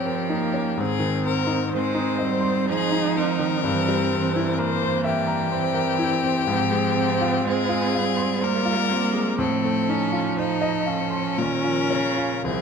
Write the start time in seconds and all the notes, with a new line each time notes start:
Already playing: G2 F3 G3 C4 C#4 D#4 G4 A#4 C#5 D#5 A#5
0.05 A#4
0.29 A#3 D#4
0.54 C#4
0.77 G#2 D#3 C4 G#4
0.99 D#3
1.25 C4 A#4
1.47 D#4
1.69 C4 C5
1.75 G#3 C5
1.95 D#4
2.19 D#5
2.24 G3
2.41 C6
2.66 F3 D#4 G#4 C5
2.92 D#4
3.16 C4 A#4
3.39 D#3
3.64 G2 C4
3.68 E3
3.89 G3
4.13 E3 C4
4.36 E4
4.58 A#3 A#4 C5
4.82 C5
5.04 G4 E5
5.27 A#5
5.52 C4 C5
5.74 A#4
5.99 E4
6.24 C4
6.47 G#2 F3 C4
6.71 G#3
6.96 C4
7.21 F4
7.45 G#3 G#4 C5
7.69 F4
7.94 G3 F5
8.17 C6
8.41 A#3 A#4 C5
8.65 F4
8.89 A#3 C4
9.13 G#3
9.38 A2 F3 C4 A4
9.64 A3
9.89 C#4 D#4
10.12 F4
10.37 D#4 A4 C5
10.61 D#5
10.86 C#4 F5
11.10 C6
11.38 A#2 D#3 A#4
11.64 F3
11.90 C#3 C#4
12.17 F4
12.44 C2 F3 C4 G#4